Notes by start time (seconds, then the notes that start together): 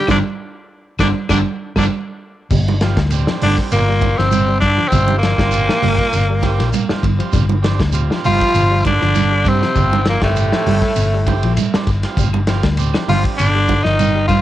0.07 G1 D3 F3 G3 A#3 D4, kick, snare, high conga, claves, shekere
0.99 G1 D3 F3 G3 A#3 D4, kick, snare, high conga, claves, shekere
1.03 D3
1.29 G1 D3 F3 G3 A#3 D4, kick, snare, high conga, claves, shekere
1.33 D3
1.76 G1 D3 F3 G3 A#3 D4, kick, snare, high conga, claves, shekere
2.51 G1 G3, kick, crash, low conga, shekere
2.68 high conga
2.81 F3 G3 C4 F4, snare, ride bell, shekere
2.97 D2 G3, kick, snare, ride bell
3.10 G3 C4 D4, ride bell, shekere
3.27 F3, snare
3.42 G1 D3 G3 D4, open hi-hat, high conga, low conga, shekere
3.57 kick, snare, ride bell
3.72 G1 A#2 A#3, ride bell, shekere
3.89 G3
4.02 kick, ride bell, high conga, shekere
4.17 G1 C3 F3 C4, snare
4.31 ride bell, high conga, shekere
4.48 G3
4.60 G2 D3 D4, kick, snare, ride bell, shekere
4.78 F3, muted fingered electric bass stroke
4.88 C3 C4, kick, low conga, shekere
4.92 G1 G3 C4 F4, snare, ride bell
5.08 high conga
5.18 A#2 A#3, shekere
5.23 F3, snare, ride bell
5.36 G1 G3 C4 F4, kick, snare, ride bell
5.52 ride bell, shekere
5.69 F3, snare
5.82 G1 G3, open hi-hat, high conga, low conga, shekere
5.98 kick, ride bell
6.13 G1, ride bell, shekere
6.30 G3
6.42 G3 C4 G4, kick, snare, ride bell, high conga, shekere
6.59 A#1 F3, snare, ride bell
6.73 ride bell, high conga, shekere
6.89 G3 C4 F4, muted fingered electric bass stroke, snare
7.03 G1, kick, ride bell, high conga, shekere
7.19 F3 G3 C4 F4, ride bell
7.33 G1 G3, kick, snare, ride bell, low conga, shekere
7.50 high conga
7.63 F3 G3 C4 D4, snare, ride bell, shekere
7.79 D2 G3, kick, snare, ride bell
7.93 G3 C4 F4, ride bell, shekere
8.10 F3, snare
8.24 G1 F3 F4, muted clean electric guitar stroke, open hi-hat, high conga, low conga, shekere
8.40 kick, snare, ride bell
8.54 G1, ride bell, shekere
8.71 G3
8.84 D3 D4, kick, snare, ride bell, high conga, shekere
9.01 G1 F3, snare
9.15 snare, ride bell, high conga, shekere
9.31 G3
9.45 G2 C3 C4, kick, snare, ride bell, high conga, shekere
9.62 F3, muted fingered electric bass stroke, snare
9.75 G1 G3 C4 F4, kick, ride bell, low conga, shekere
9.93 high conga
10.05 A#2 F3 A#3, snare, ride bell, shekere
10.21 G1 A2 G3 A3 C4 G4, kick, snare, ride bell
10.36 ride bell, shekere
10.52 F3, snare
10.66 G1 G3, open hi-hat, high conga, low conga, shekere
10.82 kick, snare, ride bell
10.96 G1, ride bell, shekere
11.14 G3
11.27 G3 C4 G4, kick, ride bell, high conga, shekere
11.43 A#1 F3, ride bell
11.57 ride bell, high conga, shekere
11.74 G3 C4 D4, muted fingered electric bass stroke, snare
11.87 G1, kick, snare, ride bell, shekere
12.03 G3 C4 F4, snare, ride bell
12.17 G1 G3, kick, ride bell, low conga, shekere
12.33 high conga, claves
12.47 F3 G3 C4 F4, snare, ride bell, shekere
12.63 D2 G3, kick, snare, ride bell
12.77 G3 C4 D4, ride bell, shekere
12.94 F3, muted fingered electric bass stroke, snare, claves
13.08 G1 F3 G3 F4, open hi-hat, high conga, low conga, shekere
13.24 kick, ride bell
13.37 G1 D3 D4, ride bell, claves, shekere
13.42 D3
13.55 G3
13.69 kick, ride bell, high conga, shekere
13.83 G1 D#3 F3 D#4, snare
13.99 ride bell, high conga, claves, shekere
14.15 G3
14.28 G2 F3 F4, kick, snare, ride bell, high conga, claves, shekere